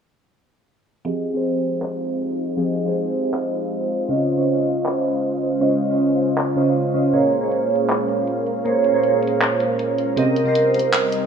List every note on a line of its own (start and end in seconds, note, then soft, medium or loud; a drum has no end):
1.05 1.32 F3 medium
1.05 10.14 G#3 medium
1.05 1.32 C4 medium
1.05 4.07 D#4 medium
1.05 10.14 F4 medium
1.05 1.32 G4 medium
1.05 1.33 G#4 medium
1.05 4.07 C5 medium
1.05 1.33 D#5 medium
1.05 10.14 F5 medium
1.33 2.55 F3 medium
1.33 2.55 C4 medium
1.33 2.56 G4 medium
1.33 2.56 G#4 medium
1.37 2.57 C5 medium
1.82 clap medium
2.57 2.84 F3 medium
2.57 2.84 C4 medium
2.57 2.84 G4 medium
2.57 2.85 G#4 medium
2.57 2.85 D#5 medium
2.85 4.07 F3 medium
2.85 4.07 C4 medium
2.85 4.08 G4 medium
2.85 4.08 G#4 medium
2.85 4.09 C5 loud
3.34 clap medium
4.09 4.35 C#3 medium
4.09 4.36 C#4 medium
4.09 10.13 C#4 medium
4.09 4.36 F4 medium
4.09 7.11 C5 medium
4.09 4.37 C5 medium
4.09 4.37 D#5 loud
4.37 5.58 C#3 medium
4.37 5.59 C#4 medium
4.37 5.59 F4 medium
4.37 5.60 C5 medium
4.41 5.60 D#5 loud
4.86 clap medium
5.61 5.87 C#3 medium
5.61 5.88 C#4 medium
5.61 5.88 F4 medium
5.61 5.88 C5 medium
5.61 5.89 D#5 medium
5.89 6.54 C#3 medium
5.89 6.54 C#4 medium
5.89 6.55 F4 medium
5.89 6.55 C5 medium
5.89 6.56 D#5 medium
6.38 clap medium
6.56 6.92 C#3 medium
6.56 6.92 C#4 medium
6.56 6.92 F4 medium
6.56 6.93 C5 medium
6.56 6.93 D#5 medium
6.94 7.11 C#3 medium
6.94 7.11 C#4 medium
6.94 7.12 F4 medium
6.94 7.12 C5 medium
6.94 7.12 D#5 loud
7.13 7.39 A#2 medium
7.13 7.40 A#3 medium
7.13 7.40 G#4 medium
7.13 11.26 A#4 medium
7.13 7.40 C5 medium
7.13 7.41 C#5 medium
7.13 closed hi-hat medium
7.33 closed hi-hat medium
7.40 8.62 A#2 medium
7.40 8.63 A#3 medium
7.40 8.63 G#4 medium
7.40 8.64 C5 medium
7.40 8.64 C#5 medium
7.52 closed hi-hat medium
7.71 closed hi-hat soft
7.76 closed hi-hat medium
7.90 clap medium
7.90 closed hi-hat medium
8.09 closed hi-hat medium
8.27 closed hi-hat medium
8.47 closed hi-hat medium
8.65 8.91 A#2 medium
8.65 8.92 A#3 medium
8.65 8.92 G#4 medium
8.65 8.92 C5 medium
8.65 8.93 C#5 loud
8.65 closed hi-hat medium
8.84 closed hi-hat medium
8.92 10.14 A#2 medium
8.92 10.15 A#3 medium
8.92 10.15 G#4 medium
8.92 10.16 C5 medium
8.92 10.16 C#5 medium
9.03 closed hi-hat medium
9.23 closed hi-hat soft
9.27 closed hi-hat medium
9.41 clap medium
9.41 closed hi-hat medium
9.60 closed hi-hat medium
9.79 closed hi-hat medium
9.98 closed hi-hat medium
10.16 10.43 C3 medium
10.16 11.26 G3 medium
10.16 10.44 C4 medium
10.16 11.26 C4 medium
10.16 11.26 D#4 medium
10.16 10.44 G4 medium
10.16 10.44 A#4 medium
10.16 11.26 D#5 medium
10.16 10.44 D#5 loud
10.16 closed hi-hat medium
10.36 closed hi-hat medium
10.44 11.26 C3 medium
10.44 11.26 C4 medium
10.44 11.26 G4 medium
10.44 11.26 A#4 medium
10.48 11.26 C5 loud
10.55 closed hi-hat medium
10.74 closed hi-hat soft
10.79 closed hi-hat medium
10.93 clap medium
10.93 closed hi-hat medium
11.12 closed hi-hat medium